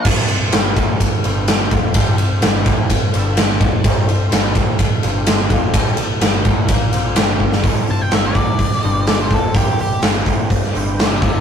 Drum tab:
CC |x---------------|----------------|----------------|----------------|
RD |--x-x-x-x-x-x-x-|x-x-x-x-x-x-x-x-|x-x-x-x-x-x-x-x-|x-x-x-x-x-x-x---|
HH |----------------|----------------|----------------|----------------|
SD |----o-------o---|----o-------o---|----o-------o---|----o-------o--o|
BD |o-----o-o-----o-|o-----o-o-----o-|o-----o-o-----o-|o-----o-o-----o-|

CC |----------------|----------------|
RD |----------------|----------------|
HH |o-o-o-o-o-o-o-o-|o-o-o-o-o-o-o-o-|
SD |----o----o--o---|----o----o--o---|
BD |o-----o-o-----o-|o-----o-o-----o-|